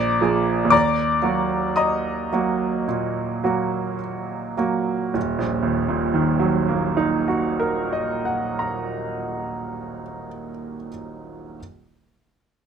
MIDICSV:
0, 0, Header, 1, 2, 480
1, 0, Start_track
1, 0, Key_signature, -6, "minor"
1, 0, Tempo, 995025
1, 342, Time_signature, 4, 2, 24, 8
1, 342, Tempo, 1065719
1, 822, Tempo, 1111111
1, 1782, Tempo, 1153846
1, 2262, Tempo, 1073345
1, 3702, Tempo, 1052632
1, 5658, End_track
2, 0, Start_track
2, 0, Title_t, "Grand piano"
2, 0, Program_c, 0, 0
2, 0, Control_c, 0, 64, 127
2, 0, Note_on_c, 0, 34, 51
2, 0, Note_on_c, 0, 74, 58
2, 0, Note_on_c, 0, 82, 53
2, 0, Note_on_c, 0, 86, 74
2, 92, Note_off_c, 0, 34, 0
2, 102, Note_on_c, 0, 53, 34
2, 103, Note_on_c, 0, 58, 33
2, 107, Note_on_c, 0, 68, 36
2, 313, Note_on_c, 0, 39, 42
2, 321, Note_off_c, 0, 74, 0
2, 321, Note_off_c, 0, 82, 0
2, 324, Note_off_c, 0, 53, 0
2, 324, Note_off_c, 0, 58, 0
2, 326, Note_off_c, 0, 68, 0
2, 332, Note_off_c, 0, 86, 0
2, 340, Note_on_c, 0, 86, 65
2, 346, Note_on_c, 0, 74, 52
2, 346, Note_on_c, 0, 82, 52
2, 352, Control_c, 0, 64, 0
2, 440, Control_c, 0, 64, 127
2, 557, Note_off_c, 0, 39, 0
2, 574, Note_on_c, 0, 54, 30
2, 578, Note_on_c, 0, 58, 30
2, 580, Note_on_c, 0, 66, 34
2, 806, Note_off_c, 0, 74, 0
2, 806, Note_off_c, 0, 82, 0
2, 814, Note_on_c, 0, 87, 54
2, 819, Note_on_c, 0, 82, 41
2, 820, Note_on_c, 0, 75, 43
2, 821, Note_off_c, 0, 86, 0
2, 1042, Note_off_c, 0, 54, 0
2, 1044, Note_off_c, 0, 58, 0
2, 1045, Note_off_c, 0, 66, 0
2, 1060, Note_on_c, 0, 54, 33
2, 1063, Note_on_c, 0, 58, 33
2, 1064, Note_on_c, 0, 66, 34
2, 1283, Note_off_c, 0, 54, 0
2, 1284, Note_off_c, 0, 58, 0
2, 1285, Note_off_c, 0, 66, 0
2, 1299, Note_on_c, 0, 46, 33
2, 1532, Note_off_c, 0, 46, 0
2, 1541, Note_on_c, 0, 54, 32
2, 1541, Note_on_c, 0, 58, 31
2, 1544, Note_on_c, 0, 66, 35
2, 1764, Note_off_c, 0, 75, 0
2, 1764, Note_off_c, 0, 82, 0
2, 1779, Note_off_c, 0, 87, 0
2, 2009, Note_off_c, 0, 54, 0
2, 2009, Note_off_c, 0, 58, 0
2, 2010, Note_off_c, 0, 66, 0
2, 2022, Note_on_c, 0, 54, 27
2, 2024, Note_on_c, 0, 58, 30
2, 2026, Note_on_c, 0, 66, 29
2, 2244, Note_off_c, 0, 54, 0
2, 2245, Note_off_c, 0, 58, 0
2, 2246, Note_off_c, 0, 66, 0
2, 2258, Note_on_c, 0, 27, 44
2, 2272, Control_c, 0, 64, 0
2, 2366, Note_on_c, 0, 34, 36
2, 2368, Control_c, 0, 64, 127
2, 2475, Note_on_c, 0, 39, 36
2, 2590, Note_on_c, 0, 46, 37
2, 2704, Note_on_c, 0, 51, 38
2, 2818, Note_on_c, 0, 54, 39
2, 2948, Note_on_c, 0, 58, 35
2, 3075, Note_on_c, 0, 63, 37
2, 3214, Note_on_c, 0, 66, 34
2, 3355, Note_on_c, 0, 70, 35
2, 3503, Note_on_c, 0, 75, 35
2, 3650, Note_on_c, 0, 78, 33
2, 3802, Note_on_c, 0, 82, 33
2, 4455, Note_off_c, 0, 27, 0
2, 4565, Note_off_c, 0, 34, 0
2, 4676, Note_off_c, 0, 39, 0
2, 4794, Note_off_c, 0, 46, 0
2, 4847, Note_off_c, 0, 54, 0
2, 4847, Note_off_c, 0, 63, 0
2, 4849, Note_off_c, 0, 58, 0
2, 4849, Note_off_c, 0, 66, 0
2, 4850, Note_off_c, 0, 51, 0
2, 4850, Note_off_c, 0, 70, 0
2, 4851, Note_off_c, 0, 78, 0
2, 4851, Note_off_c, 0, 82, 0
2, 4852, Note_off_c, 0, 75, 0
2, 5171, Control_c, 0, 64, 0
2, 5658, End_track
0, 0, End_of_file